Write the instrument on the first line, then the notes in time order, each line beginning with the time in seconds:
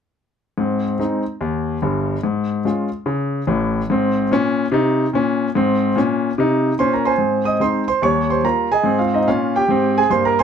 grand piano
0.58 G#2 C4
0.99 G#3 C4 D#4
1.41 D#2
1.82 G1 G2
2.23 G#2
2.65 G#3 C#4 F4
3.06 C#3
3.47 A1 A2
3.90 G#2 C4
4.31 A#2 C#4
4.72 C3 D#4
5.13 A#2 C#4
5.55 G#2 C4
5.96 A#2 C#4
6.38 C3 D#4
6.79 A#2 C#4 C5 C6
6.93 A#4 A#5
7.05 C5 G#5 C6
7.18 G#2 C4
7.45 D#5 D#6
7.60 G#3 C4 D#4 C5 C6
7.88 C5 C6
8.02 D#2 G3 C#5 C#6
8.30 C5 C6
8.44 G3 A#3 F4 A#4 A#5
8.72 G#4 D#5 G#5
8.84 G#2 C4
8.99 F4 F5
9.14 D#4 D#5
9.27 A#2 C#4 F4 F5
9.56 G4 G5
9.68 G#2 C4
9.98 G#4 G#5
10.10 G2 A#3 C5 C6
10.25 A#4 A#5
10.39 C5 G#5 C6